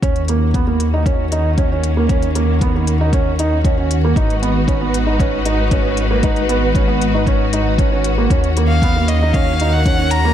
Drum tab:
HH |xxx-x-x-x-x-x-x-|xxx-x-x-x-x-x-x-|xxx-x-x-x-x-x-x-|xxx-x-x-x-x-x-x-|
BD |o---o---o---o---|o---o---o---o---|o---o---o---o---|o---o---o---o---|

HH |xxx-x-x-x-x-x-x-|
BD |o---o---o---o---|